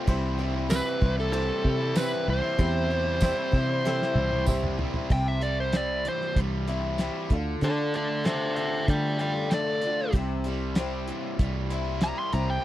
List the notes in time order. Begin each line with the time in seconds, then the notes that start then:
0.07 C2 C3 E3 G3 C4 E4 G4 C5, kick, ride bell
0.37 E3 G3 C4 E4 C5
0.41 G3 C4
0.54 G3 C4 E4
0.69 C3 E3 G3 C4 E4 G4 B4, snare, ride bell, tambourine
0.84 G3 C4 E4
1.01 C2 E3 G3 C4 E4 C5, kick
1.16 G3 C4 E4, snare
1.20 A4
1.32 C3 E3 G3 C4 E4 G4 A4 C5, ride bell
1.63 C3 E3 G3 C4 E4, kick
1.79 G3 C4 E4
1.94 C3 E3 G3 C4 E4 G4 B4, snare, ride bell, tambourine
2.13 snare
2.25 C2 E3 G3 C4 E4
2.30 C5
2.42 G3 C4 E4
2.56 E2 C3 E3 G3 C4 E4 G4, kick, ride bell
2.60 C5
2.87 E3 G3 C4 E4 C5
2.92 G3 C4
3.04 G3 C4 E4
3.19 C3 E3 G3 C4 E4 G4, kick, snare, ride bell, tambourine
3.23 E4 C5
3.34 G3 C4 E4
3.50 C3 E3 G3 C4 E4 C5, kick
3.55 G3
3.65 G3 C4 E4
3.84 C3 E3 G3 C4 E4 G4 A4 C5, snare
4.02 snare
4.13 C2 E3 G3 C4 E4, high tom
4.29 G3 C4 E4, high tom
4.45 C3 E3 G3 C4 E4 G4 C5, kick, mid tom, tambourine
4.49 C5
4.64 mid tom
4.77 E3 G3 C4 E4, floor tom
4.93 C4 E4, floor tom
4.97 G3
5.10 C2 C3 E3 G3 C4 E4 C5 G5, kick, crash
5.28 E5
5.41 G3 C4 E4 C5 D5, closed hi-hat
5.60 C5
5.73 G3 C4 E4 C5 D5, snare, closed hi-hat
6.04 E3, closed hi-hat
6.08 C5
6.21 snare
6.36 C2 G3, kick, closed hi-hat
6.68 G3 C4 E4 C5, closed hi-hat
6.98 G3 C4 E4 C5, snare, closed hi-hat
7.30 D2 D3 D4 F4 A4, kick, closed hi-hat
7.61 D3 A3 D4 F4 A4 D5, closed hi-hat
7.94 A3 D4 F4 A4 D5, closed hi-hat
8.24 A3 D4 F4 A4 C5 E5, snare, closed hi-hat
8.56 D3 C5 E5, closed hi-hat
8.88 D3 A3 D5 G5, kick, closed hi-hat
9.19 D4 F4 A4 D5 G5, closed hi-hat
9.51 A3 D4 F4 A4 D5, snare, closed hi-hat
9.82 D4 F4 A4, closed hi-hat
10.13 C2 C3 E3 G3 C4 E4 C5, kick, closed hi-hat
10.44 G3 C4 E4 C5, closed hi-hat
10.48 G3
10.75 G3 C4 E4, snare, closed hi-hat
10.80 C5
11.07 E3, closed hi-hat
11.39 C2 G3, kick, closed hi-hat
11.70 G3 C4 E4 C5, closed hi-hat
12.01 G3 C4 E4 C5 A#5, snare, closed hi-hat
12.19 C6
12.33 C2 G3 C4 E4 C5 A#5, closed hi-hat
12.50 G5